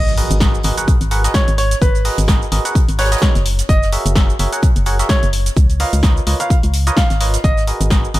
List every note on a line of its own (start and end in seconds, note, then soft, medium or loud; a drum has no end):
0.00 0.22 G#1 loud
0.00 0.11 D#5 medium
0.00 impact medium
0.08 snare soft
0.08 shaker soft
0.17 0.38 F#4 medium
0.17 0.38 G#4 medium
0.17 0.38 A#4 medium
0.17 0.38 B4 medium
0.17 0.38 D#5 medium
0.17 closed hi-hat medium
0.17 open hi-hat loud
0.31 0.58 G#1 loud
0.31 closed hi-hat medium
0.31 shaker medium
0.40 0.58 F#4 medium
0.40 0.58 G#4 medium
0.40 0.58 A#4 medium
0.40 0.58 B4 medium
0.40 0.58 D#5 medium
0.40 kick loud
0.40 snare loud
0.40 closed hi-hat medium
0.40 shaker medium
0.55 shaker soft
0.63 0.72 G#1 medium
0.63 0.76 F#4 medium
0.63 0.76 G#4 medium
0.63 0.76 A#4 medium
0.63 0.76 B4 medium
0.63 0.76 D#5 medium
0.63 closed hi-hat medium
0.63 open hi-hat loud
0.77 0.93 F#4 medium
0.77 0.93 G#4 medium
0.77 0.92 A#4 medium
0.77 0.93 B4 medium
0.77 0.92 F#5 medium
0.77 closed hi-hat medium
0.77 shaker medium
0.88 kick loud
0.88 closed hi-hat medium
0.88 shaker medium
1.01 1.28 G#1 loud
1.01 closed hi-hat soft
1.01 closed hi-hat medium
1.01 shaker soft
1.11 1.22 F#4 medium
1.11 1.22 G#4 medium
1.11 1.22 A#4 medium
1.11 1.22 B4 medium
1.11 1.22 F#5 loud
1.11 closed hi-hat medium
1.11 open hi-hat loud
1.24 1.50 F#4 medium
1.24 1.50 G#4 medium
1.24 1.50 A#4 medium
1.24 1.50 B4 medium
1.24 1.50 D#5 medium
1.24 snare soft
1.24 closed hi-hat medium
1.24 shaker medium
1.34 1.52 C#5 medium
1.34 kick loud
1.34 snare loud
1.34 closed hi-hat medium
1.34 shaker medium
1.48 1.75 G#1 loud
1.48 closed hi-hat medium
1.48 shaker soft
1.58 1.76 C#5 medium
1.58 closed hi-hat medium
1.58 open hi-hat loud
1.71 snare soft
1.71 closed hi-hat medium
1.71 shaker medium
1.82 2.10 G#1 loud
1.82 2.18 B4 medium
1.82 kick loud
1.82 closed hi-hat medium
1.82 shaker medium
1.95 closed hi-hat soft
1.95 shaker soft
2.05 2.25 F#4 medium
2.05 2.25 G#4 medium
2.05 2.25 A#4 medium
2.05 2.25 B4 medium
2.05 2.25 D#5 medium
2.05 open hi-hat loud
2.05 open hi-hat medium
2.18 2.45 G#1 loud
2.18 closed hi-hat medium
2.18 shaker medium
2.28 2.45 F#4 medium
2.28 2.45 G#4 medium
2.28 2.45 A#4 medium
2.28 2.45 B4 medium
2.28 2.45 D#5 medium
2.28 kick loud
2.28 snare loud
2.28 closed hi-hat medium
2.28 shaker medium
2.42 shaker soft
2.52 2.60 G#1 medium
2.52 2.63 F#4 medium
2.52 2.63 G#4 medium
2.52 2.63 A#4 medium
2.52 2.63 B4 medium
2.52 2.63 D#5 medium
2.52 snare soft
2.52 closed hi-hat medium
2.52 open hi-hat loud
2.65 2.80 F#4 medium
2.65 2.80 G#4 medium
2.65 2.80 A#4 medium
2.65 2.80 B4 medium
2.65 2.80 F#5 medium
2.65 closed hi-hat medium
2.65 shaker medium
2.75 kick loud
2.75 closed hi-hat medium
2.75 shaker medium
2.89 3.16 G#1 loud
2.89 closed hi-hat medium
2.89 shaker soft
2.99 3.10 F#4 medium
2.99 3.10 G#4 medium
2.99 3.10 A#4 medium
2.99 3.10 B4 medium
2.99 3.46 C#5 medium
2.99 3.10 F#5 loud
2.99 snare medium
2.99 closed hi-hat medium
2.99 open hi-hat loud
3.05 snare medium
3.05 closed hi-hat medium
3.11 3.37 F#4 medium
3.11 3.37 G#4 medium
3.11 3.37 A#4 medium
3.11 3.37 B4 medium
3.11 3.37 D#5 medium
3.11 snare medium
3.11 closed hi-hat medium
3.11 shaker medium
3.17 snare medium
3.17 closed hi-hat medium
3.22 kick loud
3.22 snare loud
3.22 closed hi-hat medium
3.22 shaker medium
3.35 3.63 F#1 loud
3.35 snare soft
3.35 closed hi-hat medium
3.35 shaker soft
3.46 closed hi-hat medium
3.46 open hi-hat loud
3.59 snare soft
3.59 closed hi-hat medium
3.59 shaker medium
3.69 3.97 F#1 loud
3.69 3.86 D#5 medium
3.69 kick loud
3.69 closed hi-hat loud
3.69 shaker medium
3.83 snare soft
3.83 shaker soft
3.92 4.13 F#4 medium
3.92 4.13 G#4 medium
3.92 4.13 A#4 medium
3.92 4.13 C#5 medium
3.92 4.13 E5 medium
3.92 closed hi-hat medium
3.92 open hi-hat loud
4.06 4.33 F#1 loud
4.06 closed hi-hat medium
4.06 shaker medium
4.15 4.33 F#4 medium
4.15 4.33 G#4 medium
4.15 4.33 A#4 medium
4.15 4.33 C#5 medium
4.15 4.33 E5 medium
4.15 kick loud
4.15 snare loud
4.15 closed hi-hat medium
4.15 shaker medium
4.30 shaker soft
4.39 4.47 F#1 medium
4.39 4.51 F#4 medium
4.39 4.51 G#4 medium
4.39 4.51 A#4 medium
4.39 4.51 C#5 medium
4.39 4.51 E5 medium
4.39 closed hi-hat medium
4.39 open hi-hat loud
4.53 4.68 F#4 medium
4.53 4.68 G#4 medium
4.53 4.68 A#4 medium
4.53 4.68 C#5 medium
4.53 4.68 F#5 medium
4.53 closed hi-hat medium
4.53 shaker medium
4.62 kick loud
4.62 closed hi-hat medium
4.62 shaker medium
4.76 5.03 F#1 loud
4.76 closed hi-hat soft
4.76 closed hi-hat medium
4.76 shaker soft
4.86 4.97 F#4 medium
4.86 4.97 G#4 medium
4.86 4.97 A#4 medium
4.86 4.97 C#5 medium
4.86 4.97 F#5 loud
4.86 closed hi-hat medium
4.86 open hi-hat loud
4.99 5.25 F#4 medium
4.99 5.25 G#4 medium
4.99 5.25 A#4 medium
4.99 5.25 C#5 medium
4.99 5.25 E5 medium
4.99 snare soft
4.99 closed hi-hat medium
4.99 shaker medium
5.09 5.27 C#5 medium
5.09 kick loud
5.09 snare loud
5.09 closed hi-hat loud
5.09 shaker medium
5.23 5.50 F#1 loud
5.23 closed hi-hat soft
5.23 shaker soft
5.33 closed hi-hat medium
5.33 open hi-hat loud
5.46 snare soft
5.46 closed hi-hat medium
5.46 shaker medium
5.56 5.85 C#2 loud
5.56 kick loud
5.56 closed hi-hat medium
5.56 shaker medium
5.70 closed hi-hat soft
5.70 shaker soft
5.80 6.00 F4 medium
5.80 6.00 A#4 medium
5.80 6.00 B4 medium
5.80 6.00 C#5 medium
5.80 6.00 D#5 medium
5.80 5.97 F5 medium
5.80 open hi-hat medium
5.80 open hi-hat loud
5.93 6.20 C#2 loud
5.93 closed hi-hat medium
5.93 shaker medium
6.03 6.20 F4 medium
6.03 6.20 A#4 medium
6.03 6.20 B4 medium
6.03 6.20 C#5 medium
6.03 6.20 D#5 medium
6.03 kick loud
6.03 snare loud
6.03 closed hi-hat medium
6.03 shaker medium
6.17 shaker soft
6.27 6.35 C#2 medium
6.27 6.38 F4 medium
6.27 6.38 A#4 medium
6.27 6.38 B4 medium
6.27 6.38 C#5 medium
6.27 6.38 D#5 medium
6.27 snare soft
6.27 closed hi-hat medium
6.27 open hi-hat loud
6.40 6.55 F4 medium
6.40 6.55 A#4 medium
6.40 6.55 B4 medium
6.40 6.55 C#5 medium
6.40 6.56 F5 medium
6.40 6.55 F5 medium
6.40 closed hi-hat medium
6.40 shaker medium
6.50 kick loud
6.50 closed hi-hat medium
6.50 shaker medium
6.63 6.91 C#2 loud
6.63 closed hi-hat medium
6.63 shaker soft
6.74 closed hi-hat medium
6.74 open hi-hat loud
6.87 7.02 F4 medium
6.87 7.02 A#4 medium
6.87 7.02 B4 medium
6.87 7.02 C#5 medium
6.87 7.02 D#5 loud
6.87 closed hi-hat medium
6.87 shaker medium
6.97 7.49 F5 medium
6.97 kick loud
6.97 snare loud
6.97 closed hi-hat loud
6.97 shaker medium
7.10 7.38 G#1 medium
7.10 snare soft
7.10 closed hi-hat medium
7.10 shaker soft
7.20 7.37 F4 medium
7.20 7.37 A#4 medium
7.20 7.37 B4 medium
7.20 7.37 C#5 medium
7.20 7.37 D#5 medium
7.20 closed hi-hat medium
7.20 open hi-hat loud
7.34 snare soft
7.34 closed hi-hat medium
7.34 shaker medium
7.44 7.72 G#1 loud
7.44 7.61 D#5 medium
7.44 kick loud
7.44 closed hi-hat medium
7.44 shaker medium
7.57 snare soft
7.57 shaker soft
7.67 7.88 F#4 medium
7.67 7.88 G#4 medium
7.67 7.88 A#4 medium
7.67 7.88 B4 medium
7.67 7.88 D#5 medium
7.67 closed hi-hat medium
7.67 open hi-hat loud
7.81 8.08 G#1 loud
7.81 closed hi-hat medium
7.81 shaker medium
7.90 8.08 F#4 medium
7.90 8.08 G#4 medium
7.90 8.08 A#4 medium
7.90 8.08 B4 medium
7.90 8.08 D#5 medium
7.90 kick loud
7.90 snare loud
7.90 closed hi-hat medium
7.90 shaker medium
8.05 shaker soft
8.14 8.20 G#1 medium
8.14 8.20 F#4 medium
8.14 8.20 G#4 medium
8.14 8.20 A#4 medium
8.14 8.20 B4 medium
8.14 8.20 D#5 medium
8.14 closed hi-hat medium
8.14 open hi-hat loud